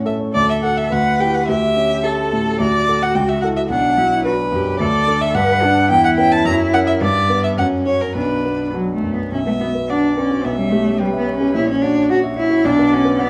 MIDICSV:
0, 0, Header, 1, 4, 480
1, 0, Start_track
1, 0, Key_signature, 2, "major"
1, 0, Tempo, 564972
1, 300, Time_signature, 2, 2, 24, 8
1, 2210, Tempo, 550964
1, 4126, Key_signature, 2, "minor"
1, 6050, Tempo, 575816
1, 8450, Tempo, 551471
1, 11416, End_track
2, 0, Start_track
2, 0, Title_t, "Violin"
2, 0, Program_c, 0, 40
2, 52, Note_on_c, 0, 76, 47
2, 120, Note_off_c, 0, 76, 0
2, 295, Note_on_c, 0, 74, 81
2, 410, Note_off_c, 0, 74, 0
2, 428, Note_on_c, 0, 76, 60
2, 475, Note_off_c, 0, 76, 0
2, 540, Note_on_c, 0, 78, 61
2, 659, Note_on_c, 0, 76, 62
2, 672, Note_off_c, 0, 78, 0
2, 786, Note_on_c, 0, 78, 70
2, 798, Note_off_c, 0, 76, 0
2, 1024, Note_on_c, 0, 79, 72
2, 1036, Note_off_c, 0, 78, 0
2, 1144, Note_on_c, 0, 78, 62
2, 1157, Note_off_c, 0, 79, 0
2, 1254, Note_off_c, 0, 78, 0
2, 1259, Note_on_c, 0, 76, 84
2, 1736, Note_on_c, 0, 69, 64
2, 1748, Note_off_c, 0, 76, 0
2, 2210, Note_off_c, 0, 69, 0
2, 2215, Note_on_c, 0, 74, 77
2, 2582, Note_on_c, 0, 78, 66
2, 2595, Note_off_c, 0, 74, 0
2, 2691, Note_on_c, 0, 79, 62
2, 2704, Note_off_c, 0, 78, 0
2, 2809, Note_on_c, 0, 76, 61
2, 2822, Note_off_c, 0, 79, 0
2, 2918, Note_off_c, 0, 76, 0
2, 2923, Note_on_c, 0, 78, 63
2, 2972, Note_off_c, 0, 78, 0
2, 3052, Note_on_c, 0, 76, 63
2, 3099, Note_off_c, 0, 76, 0
2, 3163, Note_on_c, 0, 78, 77
2, 3633, Note_off_c, 0, 78, 0
2, 3647, Note_on_c, 0, 71, 63
2, 4117, Note_off_c, 0, 71, 0
2, 4123, Note_on_c, 0, 74, 86
2, 4485, Note_on_c, 0, 76, 72
2, 4498, Note_off_c, 0, 74, 0
2, 4600, Note_on_c, 0, 78, 81
2, 4613, Note_off_c, 0, 76, 0
2, 5082, Note_off_c, 0, 78, 0
2, 5087, Note_on_c, 0, 79, 90
2, 5203, Note_off_c, 0, 79, 0
2, 5213, Note_on_c, 0, 78, 77
2, 5259, Note_off_c, 0, 78, 0
2, 5328, Note_on_c, 0, 79, 70
2, 5449, Note_on_c, 0, 81, 76
2, 5462, Note_off_c, 0, 79, 0
2, 5567, Note_off_c, 0, 81, 0
2, 5571, Note_on_c, 0, 82, 77
2, 5641, Note_off_c, 0, 82, 0
2, 5813, Note_on_c, 0, 78, 72
2, 5860, Note_off_c, 0, 78, 0
2, 5929, Note_on_c, 0, 76, 72
2, 5978, Note_off_c, 0, 76, 0
2, 6055, Note_on_c, 0, 74, 82
2, 6397, Note_off_c, 0, 74, 0
2, 6408, Note_on_c, 0, 76, 60
2, 6454, Note_off_c, 0, 76, 0
2, 6526, Note_on_c, 0, 78, 67
2, 6593, Note_off_c, 0, 78, 0
2, 6761, Note_on_c, 0, 73, 63
2, 6887, Note_on_c, 0, 70, 56
2, 6899, Note_off_c, 0, 73, 0
2, 7002, Note_off_c, 0, 70, 0
2, 7007, Note_on_c, 0, 71, 54
2, 7483, Note_off_c, 0, 71, 0
2, 7980, Note_on_c, 0, 76, 51
2, 8460, Note_on_c, 0, 74, 41
2, 8473, Note_off_c, 0, 76, 0
2, 8937, Note_on_c, 0, 76, 51
2, 8950, Note_off_c, 0, 74, 0
2, 9424, Note_on_c, 0, 71, 46
2, 9437, Note_off_c, 0, 76, 0
2, 9901, Note_on_c, 0, 73, 56
2, 9914, Note_off_c, 0, 71, 0
2, 10375, Note_off_c, 0, 73, 0
2, 10384, Note_on_c, 0, 73, 48
2, 10848, Note_on_c, 0, 74, 54
2, 10861, Note_off_c, 0, 73, 0
2, 11322, Note_off_c, 0, 74, 0
2, 11328, Note_on_c, 0, 74, 52
2, 11416, Note_off_c, 0, 74, 0
2, 11416, End_track
3, 0, Start_track
3, 0, Title_t, "Grand piano"
3, 0, Program_c, 1, 0
3, 0, Control_c, 1, 64, 127
3, 0, Note_on_c, 1, 45, 55
3, 0, Note_on_c, 1, 61, 43
3, 46, Note_on_c, 1, 69, 51
3, 123, Note_off_c, 1, 61, 0
3, 165, Note_on_c, 1, 73, 43
3, 248, Note_off_c, 1, 69, 0
3, 280, Note_off_c, 1, 45, 0
3, 294, Note_off_c, 1, 73, 0
3, 297, Note_on_c, 1, 38, 50
3, 315, Control_c, 1, 64, 0
3, 433, Control_c, 1, 64, 127
3, 536, Note_on_c, 1, 66, 38
3, 539, Note_on_c, 1, 69, 42
3, 755, Note_off_c, 1, 66, 0
3, 757, Note_off_c, 1, 69, 0
3, 767, Note_off_c, 1, 38, 0
3, 780, Note_on_c, 1, 38, 57
3, 800, Control_c, 1, 64, 0
3, 937, Control_c, 1, 64, 127
3, 1016, Note_on_c, 1, 64, 41
3, 1020, Note_on_c, 1, 67, 46
3, 1234, Note_off_c, 1, 64, 0
3, 1236, Note_off_c, 1, 67, 0
3, 1245, Note_off_c, 1, 38, 0
3, 1259, Note_on_c, 1, 38, 51
3, 1275, Control_c, 1, 64, 0
3, 1426, Control_c, 1, 64, 127
3, 1496, Note_on_c, 1, 61, 42
3, 1732, Note_on_c, 1, 67, 42
3, 1735, Note_on_c, 1, 69, 42
3, 1878, Note_off_c, 1, 61, 0
3, 1947, Note_off_c, 1, 67, 0
3, 1949, Note_off_c, 1, 69, 0
3, 1976, Note_on_c, 1, 45, 41
3, 2181, Note_off_c, 1, 38, 0
3, 2206, Note_on_c, 1, 38, 52
3, 2211, Note_off_c, 1, 45, 0
3, 2228, Control_c, 1, 64, 0
3, 2350, Control_c, 1, 64, 127
3, 2451, Note_on_c, 1, 66, 39
3, 2455, Note_on_c, 1, 69, 43
3, 2667, Note_off_c, 1, 66, 0
3, 2669, Note_off_c, 1, 69, 0
3, 2675, Note_off_c, 1, 38, 0
3, 2685, Note_on_c, 1, 37, 53
3, 2707, Control_c, 1, 64, 0
3, 2864, Control_c, 1, 64, 127
3, 2937, Note_on_c, 1, 64, 41
3, 2938, Note_on_c, 1, 69, 44
3, 3148, Note_off_c, 1, 64, 0
3, 3149, Note_off_c, 1, 69, 0
3, 3151, Note_off_c, 1, 37, 0
3, 3164, Note_on_c, 1, 35, 55
3, 3185, Control_c, 1, 64, 0
3, 3311, Control_c, 1, 64, 127
3, 3408, Note_on_c, 1, 54, 45
3, 3645, Note_on_c, 1, 62, 41
3, 3647, Note_on_c, 1, 71, 39
3, 3790, Note_off_c, 1, 54, 0
3, 3862, Note_off_c, 1, 62, 0
3, 3862, Note_off_c, 1, 71, 0
3, 3883, Note_on_c, 1, 42, 46
3, 4095, Note_off_c, 1, 35, 0
3, 4124, Note_on_c, 1, 38, 61
3, 4125, Note_off_c, 1, 42, 0
3, 4141, Control_c, 1, 64, 0
3, 4295, Control_c, 1, 64, 127
3, 4361, Note_on_c, 1, 62, 45
3, 4365, Note_on_c, 1, 69, 45
3, 4576, Note_off_c, 1, 62, 0
3, 4579, Note_off_c, 1, 69, 0
3, 4587, Note_off_c, 1, 38, 0
3, 4601, Note_on_c, 1, 43, 58
3, 4617, Control_c, 1, 64, 0
3, 4763, Control_c, 1, 64, 127
3, 4842, Note_on_c, 1, 62, 48
3, 4847, Note_on_c, 1, 71, 54
3, 5058, Note_off_c, 1, 62, 0
3, 5061, Note_off_c, 1, 71, 0
3, 5067, Note_off_c, 1, 43, 0
3, 5082, Note_on_c, 1, 40, 56
3, 5099, Control_c, 1, 64, 0
3, 5217, Control_c, 1, 64, 127
3, 5321, Note_on_c, 1, 61, 45
3, 5325, Note_on_c, 1, 71, 49
3, 5539, Note_off_c, 1, 61, 0
3, 5541, Note_off_c, 1, 71, 0
3, 5549, Note_off_c, 1, 40, 0
3, 5563, Note_on_c, 1, 42, 59
3, 5581, Control_c, 1, 64, 0
3, 5729, Control_c, 1, 64, 127
3, 5810, Note_on_c, 1, 70, 53
3, 5811, Note_on_c, 1, 61, 45
3, 6027, Note_off_c, 1, 70, 0
3, 6028, Note_off_c, 1, 61, 0
3, 6034, Note_off_c, 1, 42, 0
3, 6052, Note_on_c, 1, 43, 55
3, 6065, Control_c, 1, 64, 0
3, 6186, Control_c, 1, 64, 127
3, 6288, Note_on_c, 1, 59, 39
3, 6292, Note_on_c, 1, 71, 46
3, 6498, Note_off_c, 1, 59, 0
3, 6501, Note_off_c, 1, 71, 0
3, 6507, Note_off_c, 1, 43, 0
3, 6525, Note_on_c, 1, 42, 47
3, 6535, Control_c, 1, 64, 0
3, 6674, Control_c, 1, 64, 127
3, 6758, Note_on_c, 1, 61, 33
3, 6765, Note_on_c, 1, 66, 40
3, 6978, Note_off_c, 1, 61, 0
3, 6981, Note_off_c, 1, 66, 0
3, 6991, Note_off_c, 1, 42, 0
3, 6998, Note_on_c, 1, 35, 51
3, 7021, Control_c, 1, 64, 0
3, 7142, Control_c, 1, 64, 127
3, 7250, Note_on_c, 1, 59, 36
3, 7487, Note_on_c, 1, 62, 29
3, 7492, Note_on_c, 1, 66, 37
3, 7637, Note_off_c, 1, 59, 0
3, 7707, Note_off_c, 1, 62, 0
3, 7710, Note_off_c, 1, 66, 0
3, 7728, Note_on_c, 1, 42, 32
3, 7943, Note_off_c, 1, 35, 0
3, 7971, Note_off_c, 1, 42, 0
3, 7972, Note_on_c, 1, 35, 47
3, 7991, Control_c, 1, 64, 0
3, 8097, Note_on_c, 1, 59, 37
3, 8143, Control_c, 1, 64, 127
3, 8214, Note_on_c, 1, 66, 37
3, 8286, Note_off_c, 1, 59, 0
3, 8333, Note_on_c, 1, 71, 37
3, 8403, Note_off_c, 1, 66, 0
3, 8460, Note_on_c, 1, 78, 40
3, 8524, Note_off_c, 1, 71, 0
3, 8573, Note_on_c, 1, 74, 37
3, 8650, Note_off_c, 1, 78, 0
3, 8697, Note_on_c, 1, 71, 43
3, 8766, Note_off_c, 1, 74, 0
3, 8815, Note_on_c, 1, 66, 40
3, 8888, Note_off_c, 1, 71, 0
3, 8904, Note_off_c, 1, 35, 0
3, 8935, Note_off_c, 1, 66, 0
3, 8941, Note_on_c, 1, 35, 50
3, 8950, Control_c, 1, 64, 0
3, 9060, Note_on_c, 1, 61, 36
3, 9102, Control_c, 1, 64, 127
3, 9178, Note_on_c, 1, 67, 42
3, 9251, Note_off_c, 1, 61, 0
3, 9297, Note_on_c, 1, 73, 39
3, 9371, Note_off_c, 1, 67, 0
3, 9414, Note_on_c, 1, 79, 45
3, 9491, Note_off_c, 1, 73, 0
3, 9535, Note_on_c, 1, 76, 37
3, 9609, Note_off_c, 1, 79, 0
3, 9651, Note_on_c, 1, 73, 41
3, 9729, Note_off_c, 1, 76, 0
3, 9773, Note_on_c, 1, 67, 41
3, 9846, Note_off_c, 1, 73, 0
3, 9872, Note_off_c, 1, 35, 0
3, 9892, Note_on_c, 1, 34, 56
3, 9895, Note_off_c, 1, 67, 0
3, 9913, Control_c, 1, 64, 0
3, 10025, Note_on_c, 1, 61, 39
3, 10057, Control_c, 1, 64, 127
3, 10135, Note_on_c, 1, 66, 42
3, 10211, Note_off_c, 1, 61, 0
3, 10250, Note_on_c, 1, 73, 41
3, 10326, Note_off_c, 1, 66, 0
3, 10375, Note_on_c, 1, 78, 48
3, 10443, Note_off_c, 1, 73, 0
3, 10493, Note_on_c, 1, 76, 39
3, 10566, Note_off_c, 1, 78, 0
3, 10608, Note_on_c, 1, 73, 54
3, 10686, Note_off_c, 1, 76, 0
3, 10726, Note_on_c, 1, 66, 50
3, 10804, Note_off_c, 1, 73, 0
3, 10823, Note_off_c, 1, 34, 0
3, 10850, Note_off_c, 1, 66, 0
3, 10852, Note_on_c, 1, 35, 64
3, 10870, Control_c, 1, 64, 0
3, 10974, Note_on_c, 1, 59, 46
3, 11001, Control_c, 1, 64, 127
3, 11085, Note_on_c, 1, 66, 54
3, 11165, Note_off_c, 1, 59, 0
3, 11201, Note_on_c, 1, 71, 50
3, 11279, Note_off_c, 1, 66, 0
3, 11321, Note_on_c, 1, 78, 53
3, 11396, Note_off_c, 1, 71, 0
3, 11416, Note_off_c, 1, 35, 0
3, 11416, Note_off_c, 1, 78, 0
3, 11416, End_track
4, 0, Start_track
4, 0, Title_t, "Cello"
4, 0, Program_c, 2, 42
4, 295, Note_on_c, 2, 69, 64
4, 747, Note_off_c, 2, 69, 0
4, 772, Note_on_c, 2, 71, 67
4, 1261, Note_on_c, 2, 67, 59
4, 1274, Note_off_c, 2, 71, 0
4, 1734, Note_off_c, 2, 67, 0
4, 1740, Note_on_c, 2, 69, 65
4, 2215, Note_on_c, 2, 66, 59
4, 2228, Note_off_c, 2, 69, 0
4, 3168, Note_off_c, 2, 66, 0
4, 3173, Note_on_c, 2, 62, 52
4, 3409, Note_on_c, 2, 64, 57
4, 3422, Note_off_c, 2, 62, 0
4, 3644, Note_off_c, 2, 64, 0
4, 3649, Note_on_c, 2, 66, 60
4, 3719, Note_off_c, 2, 66, 0
4, 3893, Note_on_c, 2, 67, 58
4, 4128, Note_on_c, 2, 69, 65
4, 4141, Note_off_c, 2, 67, 0
4, 4599, Note_off_c, 2, 69, 0
4, 4604, Note_on_c, 2, 71, 67
4, 4845, Note_on_c, 2, 62, 59
4, 4858, Note_off_c, 2, 71, 0
4, 5071, Note_off_c, 2, 62, 0
4, 5076, Note_on_c, 2, 64, 75
4, 6052, Note_on_c, 2, 59, 65
4, 6064, Note_off_c, 2, 64, 0
4, 6521, Note_on_c, 2, 61, 55
4, 6534, Note_off_c, 2, 59, 0
4, 7000, Note_off_c, 2, 61, 0
4, 7005, Note_on_c, 2, 62, 39
4, 7435, Note_off_c, 2, 62, 0
4, 7485, Note_on_c, 2, 54, 54
4, 7638, Note_off_c, 2, 54, 0
4, 7658, Note_on_c, 2, 57, 50
4, 7822, Note_on_c, 2, 59, 45
4, 7834, Note_off_c, 2, 57, 0
4, 7970, Note_off_c, 2, 59, 0
4, 7975, Note_on_c, 2, 61, 61
4, 8022, Note_off_c, 2, 61, 0
4, 8096, Note_on_c, 2, 57, 52
4, 8143, Note_off_c, 2, 57, 0
4, 8208, Note_on_c, 2, 59, 60
4, 8275, Note_off_c, 2, 59, 0
4, 8450, Note_on_c, 2, 62, 67
4, 8688, Note_off_c, 2, 62, 0
4, 8699, Note_on_c, 2, 61, 56
4, 8927, Note_on_c, 2, 59, 62
4, 8940, Note_off_c, 2, 61, 0
4, 9046, Note_off_c, 2, 59, 0
4, 9051, Note_on_c, 2, 55, 55
4, 9163, Note_on_c, 2, 57, 65
4, 9176, Note_off_c, 2, 55, 0
4, 9412, Note_off_c, 2, 57, 0
4, 9422, Note_on_c, 2, 55, 64
4, 9486, Note_off_c, 2, 55, 0
4, 9576, Note_on_c, 2, 59, 60
4, 9727, Note_off_c, 2, 59, 0
4, 9732, Note_on_c, 2, 61, 60
4, 9889, Note_off_c, 2, 61, 0
4, 9894, Note_on_c, 2, 64, 70
4, 10012, Note_off_c, 2, 64, 0
4, 10022, Note_on_c, 2, 61, 60
4, 10132, Note_on_c, 2, 62, 71
4, 10145, Note_off_c, 2, 61, 0
4, 10371, Note_off_c, 2, 62, 0
4, 10379, Note_on_c, 2, 66, 75
4, 10449, Note_off_c, 2, 66, 0
4, 10611, Note_on_c, 2, 64, 75
4, 10855, Note_on_c, 2, 62, 84
4, 10868, Note_off_c, 2, 64, 0
4, 11102, Note_on_c, 2, 61, 80
4, 11115, Note_off_c, 2, 62, 0
4, 11269, Note_off_c, 2, 61, 0
4, 11274, Note_on_c, 2, 61, 62
4, 11335, Note_on_c, 2, 59, 97
4, 11348, Note_off_c, 2, 61, 0
4, 11416, Note_off_c, 2, 59, 0
4, 11416, End_track
0, 0, End_of_file